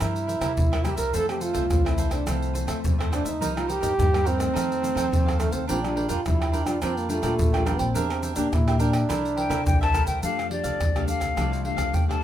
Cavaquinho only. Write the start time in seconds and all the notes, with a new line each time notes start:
0.00 E4 A#4 C5 E5
0.27 E4 A#4 C5 E5
0.40 E4 A#4 C5 E5
0.72 A#4 C5 E5
0.83 E4 A#4 C5 E5
0.96 A#4 C5 E5
1.13 F4 A4 C5 E5
1.40 F4 A4 C5 E5
1.53 F4 A4 C5 E5
1.85 A4 C5 E5
1.98 F4 A4 C5 E5
2.11 A4 C5 E5
2.27 F4 A4 C5 E5
2.53 F4 A4 C5 E5
2.67 F4 A4 C5 E5
2.98 A4 C5 E5
3.12 F4 A4 C5 E5
3.24 A4 C5 E5
3.41 D#4 A#4 C5 D#5
3.67 D#4 A#4 C5 D#5
3.80 D#4 A#4 C5 D#5
4.11 A#4 C5 D#5
4.24 D#4 A#4 C5 D#5
4.38 A#4 C5 D#5
4.54 D#4 A4 C5 F5
4.81 D#4 A4 C5 F5
4.95 D#4 A4 C5 F5
5.26 A4 C5 F5
5.38 D#4 A4 C5 F5
5.51 A4 C5 F5
5.68 D4 A#4 D5 G5
5.95 D4 A#4 D5 G5
6.08 D4 A#4 D5 G5
6.40 A#4 D5 G5
6.52 D4 A#4 D5 G5
6.65 A#4 D5 G5
6.81 D4 A#4 D5 G5
7.09 D4 A#4 D5 G5
7.22 D4 A#4 D5 G5
7.53 A#4 D5 G5
7.65 D4 A#4 D5 G5
7.79 A#4 D5 G5
7.94 D4 A#4 E5 G5
8.22 D4 A#4 E5 G5
8.36 D4 A#4 E5 G5
8.67 A#4 E5 G5
8.79 D4 A#4 E5 G5
8.92 A#4 E5 G5
9.09 E4 A#4 C5 E5
9.36 E4 A#4 C5 E5
9.49 E4 A#4 C5 E5
9.81 A#4 C5 E5
9.93 E4 A#4 C5 E5
10.06 A#4 C5 E5
10.22 D4 A4 D5 F5
10.38 A4 D5 F5
10.51 muted cavaquinho stroke
10.64 A4 D5 F5
10.81 muted cavaquinho stroke
10.95 A4 D5 F5
11.07 D4 A4 D5 F5
11.20 A4 D5 F5
11.36 D4 A4 D5 F5
11.51 A4 D5 F5
11.77 A4 D5 F5
12.09 A4 D5 F5